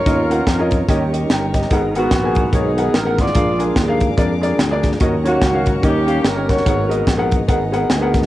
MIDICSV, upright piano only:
0, 0, Header, 1, 2, 480
1, 0, Start_track
1, 0, Key_signature, -6, "minor"
1, 0, Tempo, 412655
1, 66, Time_signature, 4, 2, 24, 8
1, 9608, End_track
2, 0, Start_track
2, 0, Title_t, "Upright piano"
2, 0, Program_c, 0, 0
2, 66, Note_on_c, 0, 61, 65
2, 72, Note_on_c, 0, 65, 59
2, 76, Note_on_c, 0, 70, 63
2, 77, Note_on_c, 0, 51, 58
2, 79, Note_on_c, 0, 75, 70
2, 216, Note_off_c, 0, 61, 0
2, 219, Note_off_c, 0, 65, 0
2, 220, Note_off_c, 0, 70, 0
2, 222, Note_off_c, 0, 75, 0
2, 345, Note_on_c, 0, 61, 68
2, 353, Note_on_c, 0, 65, 61
2, 359, Note_on_c, 0, 70, 60
2, 366, Note_on_c, 0, 78, 76
2, 506, Note_off_c, 0, 61, 0
2, 510, Note_off_c, 0, 65, 0
2, 513, Note_off_c, 0, 70, 0
2, 516, Note_off_c, 0, 78, 0
2, 683, Note_on_c, 0, 61, 85
2, 692, Note_on_c, 0, 65, 73
2, 694, Note_on_c, 0, 70, 75
2, 703, Note_on_c, 0, 75, 89
2, 784, Note_off_c, 0, 51, 0
2, 885, Note_off_c, 0, 61, 0
2, 889, Note_off_c, 0, 65, 0
2, 890, Note_off_c, 0, 70, 0
2, 895, Note_off_c, 0, 75, 0
2, 1031, Note_on_c, 0, 61, 81
2, 1036, Note_on_c, 0, 67, 72
2, 1040, Note_on_c, 0, 51, 71
2, 1043, Note_on_c, 0, 70, 72
2, 1044, Note_on_c, 0, 75, 86
2, 1178, Note_off_c, 0, 61, 0
2, 1180, Note_off_c, 0, 67, 0
2, 1184, Note_off_c, 0, 70, 0
2, 1184, Note_off_c, 0, 75, 0
2, 1311, Note_on_c, 0, 75, 61
2, 1321, Note_on_c, 0, 67, 50
2, 1499, Note_off_c, 0, 75, 0
2, 1504, Note_off_c, 0, 67, 0
2, 1525, Note_on_c, 0, 79, 68
2, 1530, Note_on_c, 0, 70, 55
2, 1746, Note_off_c, 0, 51, 0
2, 1781, Note_off_c, 0, 79, 0
2, 1784, Note_off_c, 0, 70, 0
2, 1796, Note_on_c, 0, 75, 57
2, 1804, Note_on_c, 0, 67, 52
2, 1993, Note_on_c, 0, 59, 82
2, 2001, Note_on_c, 0, 68, 75
2, 2002, Note_on_c, 0, 44, 72
2, 2007, Note_on_c, 0, 70, 72
2, 2011, Note_on_c, 0, 78, 86
2, 2139, Note_off_c, 0, 59, 0
2, 2143, Note_off_c, 0, 68, 0
2, 2146, Note_off_c, 0, 70, 0
2, 2147, Note_off_c, 0, 78, 0
2, 2247, Note_off_c, 0, 75, 0
2, 2251, Note_off_c, 0, 67, 0
2, 2268, Note_on_c, 0, 59, 68
2, 2273, Note_on_c, 0, 68, 63
2, 2278, Note_on_c, 0, 70, 63
2, 2285, Note_on_c, 0, 78, 77
2, 2427, Note_off_c, 0, 59, 0
2, 2430, Note_off_c, 0, 68, 0
2, 2432, Note_off_c, 0, 70, 0
2, 2436, Note_off_c, 0, 78, 0
2, 2603, Note_on_c, 0, 59, 70
2, 2606, Note_on_c, 0, 68, 61
2, 2614, Note_on_c, 0, 70, 63
2, 2621, Note_on_c, 0, 80, 81
2, 2707, Note_off_c, 0, 44, 0
2, 2804, Note_off_c, 0, 59, 0
2, 2806, Note_off_c, 0, 68, 0
2, 2810, Note_off_c, 0, 70, 0
2, 2813, Note_off_c, 0, 80, 0
2, 2948, Note_on_c, 0, 59, 67
2, 2954, Note_on_c, 0, 68, 59
2, 2959, Note_on_c, 0, 70, 60
2, 2963, Note_on_c, 0, 73, 73
2, 3096, Note_off_c, 0, 59, 0
2, 3099, Note_off_c, 0, 68, 0
2, 3101, Note_off_c, 0, 70, 0
2, 3104, Note_off_c, 0, 73, 0
2, 3222, Note_on_c, 0, 59, 70
2, 3228, Note_on_c, 0, 68, 62
2, 3235, Note_on_c, 0, 70, 60
2, 3240, Note_on_c, 0, 78, 73
2, 3384, Note_off_c, 0, 59, 0
2, 3387, Note_off_c, 0, 68, 0
2, 3391, Note_off_c, 0, 70, 0
2, 3393, Note_off_c, 0, 78, 0
2, 3550, Note_on_c, 0, 59, 66
2, 3560, Note_on_c, 0, 68, 59
2, 3565, Note_on_c, 0, 78, 74
2, 3566, Note_on_c, 0, 70, 61
2, 3758, Note_off_c, 0, 59, 0
2, 3763, Note_off_c, 0, 68, 0
2, 3765, Note_off_c, 0, 78, 0
2, 3766, Note_off_c, 0, 70, 0
2, 3888, Note_on_c, 0, 62, 64
2, 3895, Note_on_c, 0, 68, 60
2, 3899, Note_on_c, 0, 46, 54
2, 3902, Note_on_c, 0, 70, 57
2, 3905, Note_on_c, 0, 77, 76
2, 4046, Note_off_c, 0, 62, 0
2, 4049, Note_off_c, 0, 68, 0
2, 4053, Note_off_c, 0, 70, 0
2, 4054, Note_off_c, 0, 77, 0
2, 4171, Note_on_c, 0, 62, 65
2, 4175, Note_on_c, 0, 68, 59
2, 4184, Note_on_c, 0, 70, 59
2, 4189, Note_on_c, 0, 80, 75
2, 4339, Note_off_c, 0, 62, 0
2, 4341, Note_off_c, 0, 68, 0
2, 4345, Note_off_c, 0, 70, 0
2, 4348, Note_off_c, 0, 80, 0
2, 4513, Note_on_c, 0, 62, 80
2, 4520, Note_on_c, 0, 68, 76
2, 4523, Note_on_c, 0, 70, 71
2, 4529, Note_on_c, 0, 77, 85
2, 4615, Note_off_c, 0, 46, 0
2, 4719, Note_off_c, 0, 62, 0
2, 4722, Note_off_c, 0, 68, 0
2, 4724, Note_off_c, 0, 70, 0
2, 4727, Note_off_c, 0, 77, 0
2, 4854, Note_on_c, 0, 62, 78
2, 4859, Note_on_c, 0, 68, 66
2, 4866, Note_on_c, 0, 70, 72
2, 4869, Note_on_c, 0, 74, 82
2, 5009, Note_off_c, 0, 62, 0
2, 5012, Note_off_c, 0, 68, 0
2, 5015, Note_off_c, 0, 70, 0
2, 5017, Note_off_c, 0, 74, 0
2, 5136, Note_on_c, 0, 62, 75
2, 5144, Note_on_c, 0, 68, 75
2, 5151, Note_on_c, 0, 70, 69
2, 5156, Note_on_c, 0, 74, 87
2, 5301, Note_off_c, 0, 62, 0
2, 5305, Note_off_c, 0, 68, 0
2, 5309, Note_off_c, 0, 70, 0
2, 5311, Note_off_c, 0, 74, 0
2, 5480, Note_on_c, 0, 62, 82
2, 5483, Note_on_c, 0, 68, 74
2, 5488, Note_on_c, 0, 70, 72
2, 5497, Note_on_c, 0, 74, 85
2, 5683, Note_off_c, 0, 62, 0
2, 5684, Note_off_c, 0, 68, 0
2, 5687, Note_off_c, 0, 70, 0
2, 5691, Note_off_c, 0, 74, 0
2, 5822, Note_on_c, 0, 61, 75
2, 5824, Note_on_c, 0, 66, 71
2, 5827, Note_on_c, 0, 51, 71
2, 5832, Note_on_c, 0, 70, 72
2, 5837, Note_on_c, 0, 75, 88
2, 5973, Note_off_c, 0, 61, 0
2, 5974, Note_off_c, 0, 66, 0
2, 5978, Note_off_c, 0, 70, 0
2, 5980, Note_off_c, 0, 75, 0
2, 6091, Note_on_c, 0, 61, 66
2, 6101, Note_on_c, 0, 66, 64
2, 6105, Note_on_c, 0, 70, 61
2, 6112, Note_on_c, 0, 73, 75
2, 6259, Note_off_c, 0, 61, 0
2, 6264, Note_off_c, 0, 66, 0
2, 6266, Note_off_c, 0, 70, 0
2, 6269, Note_off_c, 0, 73, 0
2, 6436, Note_on_c, 0, 61, 69
2, 6440, Note_on_c, 0, 66, 61
2, 6442, Note_on_c, 0, 70, 62
2, 6448, Note_on_c, 0, 77, 75
2, 6540, Note_off_c, 0, 51, 0
2, 6641, Note_off_c, 0, 61, 0
2, 6643, Note_off_c, 0, 66, 0
2, 6644, Note_off_c, 0, 70, 0
2, 6647, Note_off_c, 0, 77, 0
2, 6773, Note_on_c, 0, 61, 67
2, 6781, Note_on_c, 0, 67, 60
2, 6784, Note_on_c, 0, 51, 58
2, 6786, Note_on_c, 0, 70, 59
2, 6791, Note_on_c, 0, 75, 71
2, 6929, Note_off_c, 0, 61, 0
2, 6933, Note_off_c, 0, 67, 0
2, 6935, Note_off_c, 0, 70, 0
2, 6938, Note_off_c, 0, 75, 0
2, 7054, Note_on_c, 0, 61, 64
2, 7059, Note_on_c, 0, 67, 64
2, 7064, Note_on_c, 0, 70, 60
2, 7071, Note_on_c, 0, 77, 74
2, 7221, Note_off_c, 0, 61, 0
2, 7223, Note_off_c, 0, 67, 0
2, 7226, Note_off_c, 0, 70, 0
2, 7229, Note_off_c, 0, 77, 0
2, 7399, Note_on_c, 0, 61, 67
2, 7408, Note_on_c, 0, 67, 59
2, 7411, Note_on_c, 0, 70, 62
2, 7415, Note_on_c, 0, 73, 75
2, 7498, Note_off_c, 0, 51, 0
2, 7603, Note_off_c, 0, 61, 0
2, 7607, Note_off_c, 0, 67, 0
2, 7609, Note_off_c, 0, 70, 0
2, 7611, Note_off_c, 0, 73, 0
2, 7741, Note_on_c, 0, 59, 66
2, 7743, Note_on_c, 0, 68, 60
2, 7747, Note_on_c, 0, 44, 57
2, 7749, Note_on_c, 0, 70, 61
2, 7756, Note_on_c, 0, 78, 73
2, 7893, Note_off_c, 0, 59, 0
2, 7894, Note_off_c, 0, 68, 0
2, 7897, Note_off_c, 0, 70, 0
2, 7900, Note_off_c, 0, 78, 0
2, 8015, Note_on_c, 0, 59, 72
2, 8019, Note_on_c, 0, 68, 60
2, 8023, Note_on_c, 0, 70, 62
2, 8031, Note_on_c, 0, 75, 76
2, 8181, Note_off_c, 0, 59, 0
2, 8183, Note_off_c, 0, 68, 0
2, 8185, Note_off_c, 0, 70, 0
2, 8189, Note_off_c, 0, 75, 0
2, 8354, Note_on_c, 0, 59, 86
2, 8355, Note_on_c, 0, 68, 77
2, 8363, Note_on_c, 0, 70, 77
2, 8366, Note_on_c, 0, 78, 90
2, 8461, Note_off_c, 0, 44, 0
2, 8561, Note_off_c, 0, 59, 0
2, 8561, Note_off_c, 0, 68, 0
2, 8565, Note_off_c, 0, 70, 0
2, 8567, Note_off_c, 0, 78, 0
2, 8702, Note_on_c, 0, 59, 79
2, 8705, Note_on_c, 0, 68, 72
2, 8710, Note_on_c, 0, 70, 67
2, 8717, Note_on_c, 0, 78, 84
2, 8854, Note_off_c, 0, 59, 0
2, 8856, Note_off_c, 0, 68, 0
2, 8858, Note_off_c, 0, 70, 0
2, 8862, Note_off_c, 0, 78, 0
2, 8983, Note_on_c, 0, 59, 81
2, 8987, Note_on_c, 0, 68, 71
2, 8996, Note_on_c, 0, 70, 71
2, 9000, Note_on_c, 0, 78, 89
2, 9146, Note_off_c, 0, 59, 0
2, 9148, Note_off_c, 0, 68, 0
2, 9152, Note_off_c, 0, 70, 0
2, 9154, Note_off_c, 0, 78, 0
2, 9191, Note_on_c, 0, 80, 62
2, 9321, Note_on_c, 0, 59, 86
2, 9326, Note_on_c, 0, 68, 78
2, 9332, Note_on_c, 0, 70, 74
2, 9336, Note_on_c, 0, 78, 88
2, 9525, Note_off_c, 0, 59, 0
2, 9527, Note_off_c, 0, 68, 0
2, 9530, Note_off_c, 0, 70, 0
2, 9532, Note_off_c, 0, 78, 0
2, 9608, Note_off_c, 0, 80, 0
2, 9608, End_track
0, 0, End_of_file